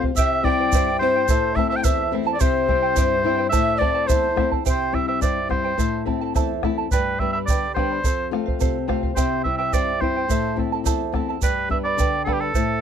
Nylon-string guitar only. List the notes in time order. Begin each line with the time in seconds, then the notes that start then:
Already playing: C3
0.15 C3
0.43 G3 C4 E4
0.72 G2
1.00 G3 C4 E4
1.28 A2
1.56 A3 C4 E4
1.83 E2
2.12 A3 C4 E4
2.40 C3
2.68 G3 C4 E4
2.96 G2
3.24 G3 C4 E4
3.53 A2
3.80 A3 C4 E4
4.09 E2
4.36 A3 C4 E4
4.65 C3
4.92 G3 C4 E4
5.21 G2
5.49 G3 C4 E4
5.78 A2
6.06 A3 C4 E4
6.34 E2
6.64 A3 C4 E4
6.91 G2
7.21 G3 B3 D4
7.48 D3
7.76 G3 B3 D4
8.04 F2
8.31 A3 C4 F4
8.60 C3
8.88 A3 C4 F4
9.16 C3
9.45 G3 C4 E4
9.74 G2
10.00 G3 C4 E4
10.28 A2
10.56 A3 C4 E4
10.84 E2
11.12 A3 C4 E4
11.41 G2
11.69 G3 B3 D4
11.97 D3
12.26 G3 B3 D4
12.55 A2